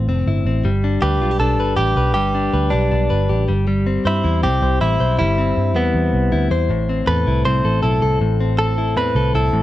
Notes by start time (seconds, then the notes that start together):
Already playing: A2 F4
0.07 F1 C4
0.27 G1 E4
0.45 A1 C4
0.64 G1 G3
0.84 D4
1.02 D2 G4 B4
1.21 B1 F4
1.31 G4
1.40 B1 D4 A4
1.59 G1 B4
1.77 A1 G4
1.96 B1 B4
2.14 G1 G3 G4
2.35 D4
2.53 D2 B4
2.70 B1 D4 G4
2.91 B1 D4
3.10 G1 B4
3.29 A1 G4
3.48 G1 G3
3.67 G3
3.86 C4
4.05 G2 E4 C5
4.24 E2 E4
4.43 C2 C4 G4
4.62 C2 C5
4.81 A1 E4
5.00 B1 C5
5.19 G1 G3 E4
5.38 C4
5.57 G2
5.76 E2 B3 E4
5.94 E2
6.13 C2
6.32 D2 E4
6.51 E2 C5
6.69 A1 A2
6.89 C4
7.07 E2 A4 B4
7.27 C2 E4
7.45 C2 C4 C5
7.65 A1 A4
7.83 B1 E4 A4
8.02 C2 A4
8.21 A1 A2
8.40 C4
8.59 A4
8.78 E4
8.96 E2 C4 B4
9.15 C2 A4
9.34 C2 E4 A4
9.53 A1 A2